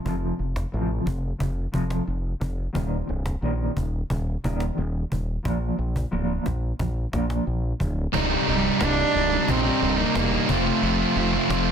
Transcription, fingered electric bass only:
0.05 F1
0.39 F1
0.74 A1
1.06 F1
1.40 F1
1.74 F1
2.07 F1
2.41 F1
2.75 D#1
3.09 C1
3.42 A#1
3.76 D#1
4.10 D#1
4.44 D#1
4.78 D#1
5.12 D#1
5.45 A#1
5.79 A#1
6.12 D1
6.46 A#1
6.79 A#1
7.13 A#1
7.47 A#1
7.81 D1
8.14 C1
8.47 C1
8.81 C1
9.16 C1
9.49 A#1
9.82 C1
10.15 E1
10.49 F1
10.82 F1
11.16 F1
11.49 F1

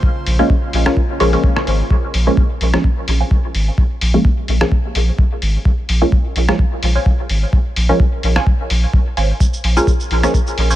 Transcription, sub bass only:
0.27 A#1
0.73 A#1
1.20 A#1
1.67 G#1
2.14 A#1
2.61 A#1
3.08 A#1
3.55 G#1
4.01 A#1
4.48 A#1
4.95 A#1
5.42 G#1
5.89 A#1
6.36 A#1
6.83 A#1
7.30 G#1
7.76 A#1
8.23 A#1
8.70 A#1
9.17 G#1
9.64 A#1
10.11 A#1
10.58 A#1

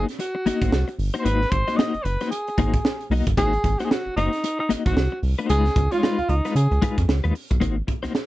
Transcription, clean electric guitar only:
0.19 muted clean electric guitar stroke
0.35 muted clean electric guitar stroke
0.46 A#3 D#4 F#4 D#5
0.62 A#3 D#4 F#4 C5
0.72 muted clean electric guitar stroke
0.88 muted clean electric guitar stroke
1.14 A#3 D#4 F#4 C5
1.25 A#3 D#4 F#4 C5
1.51 muted clean electric guitar stroke
1.68 A#3 D#4 F#4 D#5
1.78 A#3 D#4 F#4 C5
2.06 muted clean electric guitar stroke
2.21 A#3 D#4 F#4 C5
2.32 muted clean electric guitar stroke
2.48 muted clean electric guitar stroke
2.58 A#3 D#4 F#4 C5
2.85 muted clean electric guitar stroke
3.11 A#3 D#4 F#4 D#5
3.37 A#3 D#4 F#4 C5
3.54 muted clean electric guitar stroke
3.65 muted clean electric guitar stroke
3.80 A#3 D#4 F#4 C5
3.91 muted clean electric guitar stroke
4.17 A#3 D#4 F#4 C5
4.44 muted clean electric guitar stroke
4.59 muted clean electric guitar stroke
4.69 A#3 D#4 F#4 D#5
4.86 A#3 D#4 F#4 C5
4.96 muted clean electric guitar stroke
5.12 muted clean electric guitar stroke
5.39 A#3 D#4 F#4 C5
5.50 G#3 D#4 F4 B4
5.77 muted clean electric guitar stroke
5.92 G#3 D#4 F4 C#5
6.03 G#3 D#4 F4 B4
6.30 muted clean electric guitar stroke
6.45 G#3 D#4 F4 B4
6.56 muted clean electric guitar stroke
6.72 muted clean electric guitar stroke
6.82 G#3 D#4 F4 B4
7.08 muted clean electric guitar stroke
7.24 G#3 D#4 F4 B4
7.34 muted clean electric guitar stroke
7.51 muted clean electric guitar stroke
7.60 A#3 D#4 F#4 C5
7.76 muted clean electric guitar stroke
7.87 muted clean electric guitar stroke
8.03 A#3 D#4 F#4 C5
8.14 muted clean electric guitar stroke

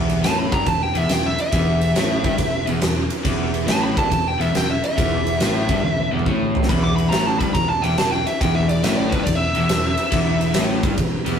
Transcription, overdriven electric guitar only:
Already playing: E2
0.23 A2
0.52 G2
0.67 E2
0.95 E2
1.09 E2
1.53 E2
1.96 A2
2.24 G2
2.38 E2
2.67 E2
2.81 E2
3.25 E2
3.67 A2
3.96 G2
4.11 E2
4.39 E2
4.53 E2
4.97 E2
5.40 A2
5.70 G2
5.85 E2
6.12 E2
6.26 A2
6.68 E2
7.11 A2
7.40 G2
7.55 E2
7.84 E2
7.98 E2
8.42 E2
8.84 A2
9.13 G2
9.27 E2
9.56 E2
9.69 E2
10.12 E2
10.56 A2
10.83 G2
10.99 E2
11.26 E2

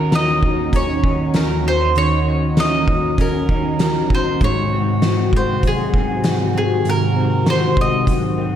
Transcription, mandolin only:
Already playing: A#4
0.15 D#5
0.76 C#5
1.37 A#4
1.68 C5
1.98 C#5
2.60 D#5
3.21 A#4
4.15 C5
4.44 C#5
5.36 C5
5.67 G#4
6.58 G#4
6.89 A#4
7.50 C5
7.81 D#5

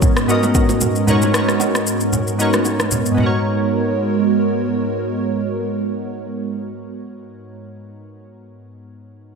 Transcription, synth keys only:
Already playing: G#2 B3 D#4 F#4 A#4 C#5 D#5
0.27 G#2 B3 D#4 F#4 A#4 D#5
1.07 G#2 B3 D#4 F#4 A#4 C#5
1.33 G#2 B3 D#4 F#4 A#4 C#5
2.38 G#2 B3 D#4 F#4 A#4 C#5
3.11 G#2 B3
3.17 D#4 F#4
3.23 A#4 C#5

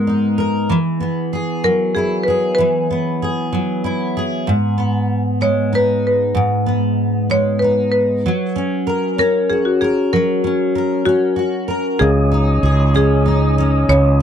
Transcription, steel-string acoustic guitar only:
Already playing: G#2 G#3 B3 A#4
0.07 D#4
0.38 A#4
0.70 E3
1.00 B3
1.33 G#4
1.64 F#3
1.96 E4
2.28 G#4
2.58 E3
2.90 B3
3.22 G#4
3.52 F#3
3.84 E4
4.17 G#4
4.47 G#2
4.78 B3
5.41 G#3
5.73 D#4
6.35 G#2
6.66 B3
7.30 G#3
7.62 D#4
8.26 F#3
8.56 C#4
8.87 A#4
9.18 C#4
9.50 F#4
9.81 A#4
10.13 F#3
10.44 C#4
10.75 A#4
11.06 C#4
11.36 F#4
11.68 A#4
11.99 C#3
12.31 D#4
12.63 G#4
12.95 C#4
13.26 D#4
13.58 C#4
13.90 C#3

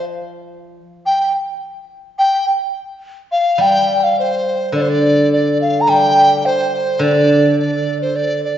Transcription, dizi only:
1.06 G5
2.19 G5
3.32 F5
3.61 G5
4.00 F5 G5
4.19 C5
4.76 D5
4.81 C5
4.90 D5
5.33 D5
5.61 F5
5.81 A#5
5.89 G5
6.46 C5
7.03 D5
7.60 D5
8.02 C5
8.16 D5
8.45 D5

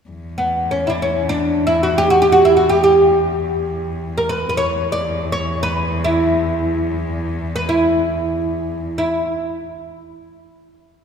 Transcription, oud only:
0.38 B3
0.71 C#4
0.87 D4 E4
1.02 C#4
1.29 D4
1.67 E4
1.83 F#4
1.98 G4
2.10 F#4
2.22 G4
2.32 F#4
2.45 E4
2.57 F#4
2.69 G4
2.84 G4
4.18 A#4
4.29 B4
4.49 B4
4.57 C#5
4.92 D5
5.32 C#5
5.63 B4
6.04 E4
7.56 B4
7.69 E4
8.98 E4

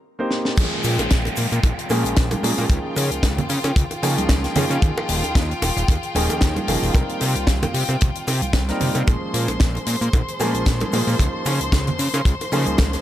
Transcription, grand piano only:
0.19 A#3 C4 D#4 G4 C5
0.57 F3 G#3 A#3 C#4 G#4
1.90 F3 G#3 A#3 C#4 G#4
2.43 F3 G#3 A#3 C#4 G#4
2.69 F3 A#3 C#4
4.02 F3 A#3 C#4 D#4 G#4
4.55 F3 A#3 C#4 D#4 G#4
4.81 F3 G#4
6.15 F3 A#3 C#4 D#4 G#4
6.68 F3 A#3 C#4 D#4 G#4
6.94 G3 A#3 C4 D#4 A#4
8.68 G3 A#3 C4 D#4 A#4
9.06 F3 G#3 A#3 C#4 G#4
10.40 F3 G#3 A#3 C#4 G#4
10.92 F3 G#3 A#3 C#4 G#4
11.19 F3 A#3 C#4 D#4
12.52 F3 A#3 C#4 D#4 G#4

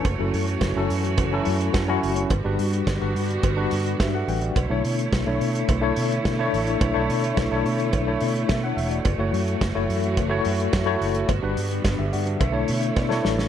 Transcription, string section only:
Already playing: A3 C#5
0.05 E3 F#4
2.31 D3 G3 B3 F#4
4.56 D3 A3 E4 C#5
9.05 E3 F#4
11.29 D3 G3 B3
12.40 A3 E4 C#5

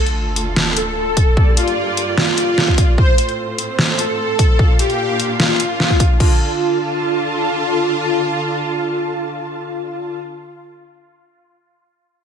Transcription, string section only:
Already playing: D2 D3 A3 F4 A4
1.37 G2 A#3 G4 D5
2.98 A2 A3 C4 F4 C5
4.59 A#2 A#3 D4 F5
6.20 D3 D4 F4 A4 A5

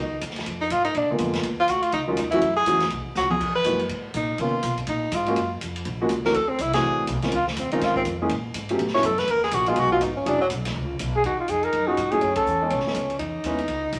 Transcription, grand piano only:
1.10 D3 G#3 A#3 B3 F4
2.07 D#3 F#3 G#3 C#4 F4
2.33 E3 F#3 A3 C#4 F#4
2.67 E3 F#3 A3 C#4 F#4
3.65 E3 G#3 A#3 D#4 F#4
4.40 D#3 A#3 B3 C#4 F4
5.27 F3 G#3 A#3 C#4 F#4
6.01 F3 G#3 A#3 C#4 F#4
6.25 E3 A3 C4 D4 F#4
6.74 E3 A3 C4 D4 F#4
7.23 D#3 G#3 C4 C#4 F4
7.72 D#3 G#3 C4 C#4 F4
8.22 E3 G#3 A#3 C#4 G#4
8.70 F#3 A3 B3 C#4 G4
8.94 F#3 A3 B3 C#4 E4
9.68 F#3 G#3 B3 D#4 G#4
9.92 F#3 G#3 B3 D#4 F#4
10.26 F#3 C#4 D4 E4 G#4
11.88 F#3 C#4 D#4 F4 G#4
12.12 F#3 A3 C#4 E4 G#4
12.62 G#3 B3 C#4 D#4 A4
12.86 G#3 B3 C#4 D#4 A4
13.46 G#3 B3 C#4 E4 B4

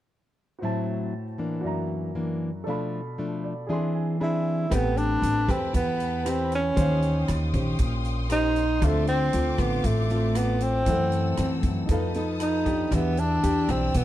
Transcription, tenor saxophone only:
4.23 E4
4.74 B3
4.98 D4
5.52 C4
5.76 B3
6.28 C4
6.55 C#4
8.32 D#4
8.85 A3
9.08 C4
9.60 B3
9.86 A3
10.37 B3
10.63 C4
12.42 D#4
12.94 B3
13.20 D4
13.71 C4
13.97 B3

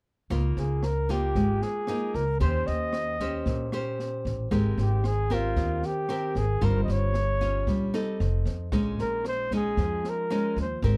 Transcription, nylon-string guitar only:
0.30 C#3 A#3 D#4 F4
1.09 A#3 D#4 F4
1.36 G#3
1.88 A#3 D#4 F4
2.40 D#3 C#4 G4 C5
3.21 C#4 G4 C5
3.47 A#2
3.73 C#4 G4 C5
4.51 G#3 C4 G4 A#4
5.30 C4 G4 A#4
5.56 D#3
6.09 C4 G4 A#4
6.61 G3 C#4 F4 C5
7.41 C#4 F4
7.68 G3
7.94 C4 D#4 A4
8.73 A#2 G#3 C#4 D#4
9.52 G#3 C#4 D#4
9.79 F3
10.30 G#3 C#4 D#4
10.84 G#3 C4 G4 A#4

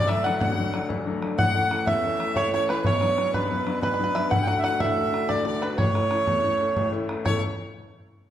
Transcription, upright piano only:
Already playing: D1 D2
0.09 F#3 A3 D4
0.25 F#3 A3 D4
0.41 A1
0.57 F#3 A3 D4
0.73 F#3 A3 D4
0.89 D1 D2
1.06 F#3 A3 D4
1.21 F#3 A3 D4
1.39 A1 A2
1.55 E3 A3 C#4
1.71 E3 A3 C#4
1.88 E2
2.04 E3 A3 C#4
2.19 E3 A3 C#4
2.36 A1 A2
2.53 E3 A3 C#4
2.69 E3 A3 C#4
2.85 B1 B2
3.01 F#3 B3 D4
3.17 F#3 B3 D4
3.34 F#2
3.50 F#3 B3 D4
3.66 F#3 B3 D4
3.82 B1 B2
3.99 F#3 B3 D4
4.15 F#3 B3 D4
4.32 D2 D3
4.47 A3 D4 F#4
4.65 A3 D4 F#4
4.81 A2
4.96 A3 D4 F#4
5.12 A3 D4 F#4
5.29 D2 D3
5.45 A3 D4 F#4
5.62 A3 D4 F#4
5.78 A1 A2
5.95 A3 C#4 E4
6.11 A3 C#4 E4
6.27 E2
6.43 A3 C#4 E4
6.60 A3 C#4 E4
6.77 A1 A2
6.92 A3 C#4 E4
7.09 A3 C#4 E4
7.24 A1 E2 C#3 A3 E4 A4

